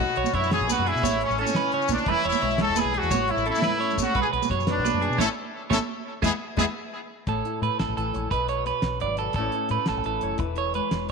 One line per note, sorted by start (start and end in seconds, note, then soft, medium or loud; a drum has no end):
0.00 1.01 B2 medium
0.00 0.31 F#4 medium
0.16 0.23 B1 medium
0.16 0.33 C#5 medium
0.16 closed hi-hat soft
0.24 high conga medium
0.24 low conga medium
0.24 maracas medium
0.32 0.62 F#2 medium
0.32 0.68 D4 medium
0.32 0.51 E4 medium
0.32 0.67 C#5 medium
0.32 kick medium
0.32 closed hi-hat soft
0.43 low conga soft
0.43 maracas soft
0.50 1.01 B3 medium
0.50 1.01 F#4 medium
0.50 0.67 G#4 medium
0.50 snare medium
0.50 closed hi-hat medium
0.50 low conga medium
0.61 0.73 B1 medium
0.69 0.84 D4 medium
0.69 0.86 F#4 medium
0.69 0.86 B4 medium
0.69 closed hi-hat soft
0.69 high conga medium
0.69 maracas loud
0.77 0.91 F#2 medium
0.77 low conga medium
0.85 1.01 D4 medium
0.85 1.21 E4 medium
0.85 1.03 G#4 medium
0.85 closed hi-hat soft
0.85 low conga soft
0.95 1.02 B2 medium
0.95 maracas soft
1.02 1.23 A1 medium
1.02 1.54 A2 medium
1.02 1.36 C#5 medium
1.02 kick medium
1.02 closed hi-hat medium
1.02 high conga medium
1.02 low conga medium
1.02 maracas loud
1.21 1.38 C#4 medium
1.21 closed hi-hat soft
1.21 low conga soft
1.29 1.43 A1 medium
1.29 low conga medium
1.29 maracas soft
1.38 1.87 C#4 medium
1.38 2.59 E4 medium
1.38 1.55 A4 medium
1.38 closed hi-hat soft
1.46 high conga medium
1.46 maracas medium
1.54 1.72 B2 medium
1.54 1.72 B4 medium
1.54 snare medium
1.54 closed hi-hat medium
1.54 low conga medium
1.54 maracas soft
1.65 low conga soft
1.72 1.90 C#3 medium
1.72 2.06 C#5 medium
1.72 closed hi-hat soft
1.72 low conga soft
1.82 maracas soft
1.88 1.96 B1 medium
1.88 2.05 D3 medium
1.88 2.08 D4 medium
1.88 kick medium
1.88 closed hi-hat soft
1.88 high conga medium
1.88 maracas medium
1.98 maracas soft
2.06 2.13 E1 medium
2.06 3.09 E3 medium
2.06 2.26 E4 medium
2.06 2.24 B4 medium
2.06 kick medium
2.06 closed hi-hat medium
2.06 low conga medium
2.24 2.31 E1 medium
2.24 2.59 E4 medium
2.24 2.41 C#5 medium
2.24 closed hi-hat soft
2.32 high conga medium
2.32 low conga medium
2.32 maracas medium
2.41 2.69 B1 medium
2.41 2.59 G#3 medium
2.41 2.75 C#5 medium
2.41 snare soft
2.41 closed hi-hat soft
2.51 low conga soft
2.51 maracas soft
2.58 3.10 G#3 medium
2.58 3.10 G#4 medium
2.58 snare medium
2.58 closed hi-hat medium
2.58 low conga medium
2.62 2.78 A4 medium
2.68 2.81 E1 medium
2.76 2.95 G#4 medium
2.76 2.93 B4 medium
2.76 muted nylon-string guitar stroke medium
2.76 closed hi-hat medium
2.76 high conga medium
2.76 low conga soft
2.76 maracas medium
2.85 2.98 B1 medium
2.85 low conga medium
2.94 3.09 E4 medium
2.94 3.30 F#4 medium
2.94 3.11 G#4 medium
2.94 closed hi-hat soft
2.94 low conga soft
3.03 3.09 E2 medium
3.03 maracas soft
3.11 3.31 A1 loud
3.11 4.15 A2 medium
3.11 3.44 C#5 medium
3.11 kick medium
3.11 closed hi-hat medium
3.11 high conga medium
3.11 low conga medium
3.11 maracas medium
3.28 3.47 E4 medium
3.28 closed hi-hat soft
3.28 low conga soft
3.37 3.50 A1 medium
3.37 low conga medium
3.37 maracas soft
3.45 3.62 C#4 medium
3.45 3.96 E4 medium
3.45 3.63 A4 medium
3.45 closed hi-hat soft
3.55 high conga medium
3.55 maracas medium
3.62 4.13 A3 medium
3.62 3.80 B4 medium
3.62 muted nylon-string guitar stroke medium
3.62 snare medium
3.62 closed hi-hat medium
3.62 low conga medium
3.75 low conga soft
3.80 3.99 C#4 medium
3.80 4.14 C#5 medium
3.80 closed hi-hat soft
3.80 low conga soft
3.90 low conga medium
3.90 maracas soft
3.98 4.04 A1 medium
3.98 4.14 C#4 medium
3.98 kick medium
3.98 closed hi-hat soft
3.98 high conga medium
3.98 maracas medium
4.02 4.17 F#4 medium
4.15 4.22 B1 medium
4.15 5.18 B2 medium
4.15 4.32 B4 medium
4.15 kick medium
4.15 closed hi-hat medium
4.15 low conga medium
4.20 4.27 G#4 medium
4.33 4.39 B1 medium
4.33 4.49 B4 medium
4.33 closed hi-hat soft
4.42 high conga medium
4.42 low conga medium
4.42 maracas medium
4.50 4.79 F#2 medium
4.50 4.84 F#4 medium
4.50 4.83 C#5 medium
4.50 kick medium
4.50 snare soft
4.50 closed hi-hat soft
4.59 low conga soft
4.59 maracas soft
4.67 5.17 B3 medium
4.67 5.17 D4 medium
4.67 5.17 B4 medium
4.67 snare medium
4.67 closed hi-hat medium
4.67 low conga medium
4.77 4.90 B1 medium
4.85 5.18 F#4 medium
4.85 5.01 B4 medium
4.85 closed hi-hat soft
4.85 high conga medium
4.85 maracas medium
4.93 5.07 F#2 medium
4.93 low conga medium
5.01 5.18 D4 medium
5.01 5.18 G#4 medium
5.01 closed hi-hat soft
5.01 low conga soft
5.10 5.17 B2 medium
5.10 maracas soft
5.18 5.26 A1 medium
5.18 5.25 A3 medium
5.18 5.25 C#4 medium
5.18 5.27 C#4 medium
5.18 5.24 E4 loud
5.18 5.26 E4 medium
5.18 5.25 A4 medium
5.18 5.27 A4 medium
5.18 5.25 C#5 medium
5.18 kick medium
5.18 snare medium
5.18 high conga loud
5.18 maracas loud
5.70 5.78 A1 medium
5.70 5.77 A3 medium
5.70 5.77 C#4 medium
5.70 5.76 E4 medium
5.70 5.77 E4 medium
5.70 5.78 E4 medium
5.70 5.76 A4 medium
5.70 5.78 A4 medium
5.70 5.76 C#5 medium
5.70 kick medium
5.70 snare medium
5.70 high conga medium
5.70 maracas medium
6.22 6.29 E2 medium
6.22 6.29 G#3 medium
6.22 6.29 B3 medium
6.22 6.30 B3 medium
6.22 6.29 E4 medium
6.22 6.31 E4 medium
6.22 6.28 G#4 medium
6.22 6.30 G#4 medium
6.22 6.29 B4 medium
6.22 6.28 E5 medium
6.22 kick medium
6.22 snare medium
6.22 high conga medium
6.22 maracas medium
6.57 6.64 E2 medium
6.57 6.63 G#3 medium
6.57 6.63 B3 medium
6.57 6.64 B3 medium
6.57 6.63 E4 medium
6.57 6.65 E4 medium
6.57 6.64 G#4 medium
6.57 6.64 B4 medium
6.57 6.64 E5 medium
6.57 kick medium
6.57 snare medium
6.57 high conga loud
6.57 maracas medium
7.27 7.41 A1 medium
7.27 8.30 A2 medium
7.27 7.61 A4 medium
7.27 8.12 C#5 medium
7.27 kick medium
7.27 closed hi-hat medium
7.45 8.32 E4 soft
7.45 closed hi-hat soft
7.62 7.69 A2 medium
7.62 8.29 A3 medium
7.62 7.79 B4 medium
7.62 closed hi-hat soft
7.79 7.86 A1 medium
7.79 7.96 A4 medium
7.79 snare medium
7.79 closed hi-hat medium
7.88 7.95 A1 medium
7.97 8.10 A1 medium
7.97 8.30 E3 medium
7.97 8.30 A4 medium
7.97 closed hi-hat soft
8.14 8.28 A#1 medium
8.14 8.29 C#5 medium
8.14 closed hi-hat soft
8.31 8.71 B1 medium
8.31 9.33 B2 medium
8.31 8.48 B4 medium
8.31 9.19 B4 medium
8.31 kick medium
8.31 closed hi-hat medium
8.48 9.34 F#4 soft
8.48 8.66 C#5 medium
8.48 closed hi-hat soft
8.65 9.33 B3 medium
8.65 9.00 B4 medium
8.65 closed hi-hat soft
8.82 9.03 B1 medium
8.82 snare medium
8.82 closed hi-hat medium
9.00 9.28 G#1 medium
9.00 9.33 F#3 medium
9.00 9.18 D5 medium
9.00 closed hi-hat soft
9.17 9.35 A4 medium
9.17 9.34 B4 medium
9.17 closed hi-hat soft
9.33 9.48 A1 medium
9.33 10.41 A2 medium
9.33 9.69 A4 medium
9.33 kick medium
9.33 closed hi-hat medium
9.38 9.70 A3 medium
9.38 10.39 C#4 medium
9.38 9.53 E4 medium
9.38 10.22 C#5 medium
9.52 10.56 E4 soft
9.52 closed hi-hat soft
9.69 9.77 A2 medium
9.69 10.38 A3 medium
9.69 9.87 B4 medium
9.69 closed hi-hat soft
9.86 9.95 A1 medium
9.86 10.05 A4 medium
9.86 snare medium
9.86 closed hi-hat medium
9.97 10.04 A1 medium
10.04 10.18 A1 medium
10.04 10.38 E3 medium
10.04 10.39 A4 medium
10.04 closed hi-hat soft
10.21 10.36 F#1 medium
10.21 10.38 C#5 medium
10.21 closed hi-hat soft
10.38 10.79 E1 medium
10.38 11.12 E3 medium
10.38 11.12 B4 medium
10.38 muted clean electric guitar stroke medium
10.38 kick medium
10.38 closed hi-hat medium
10.56 11.12 G#4 medium
10.56 10.74 C#5 medium
10.56 closed hi-hat soft
10.74 11.12 G#3 medium
10.74 11.08 B4 medium
10.74 closed hi-hat soft
10.91 11.11 E1 medium
10.91 snare medium
10.91 closed hi-hat medium
11.09 closed hi-hat soft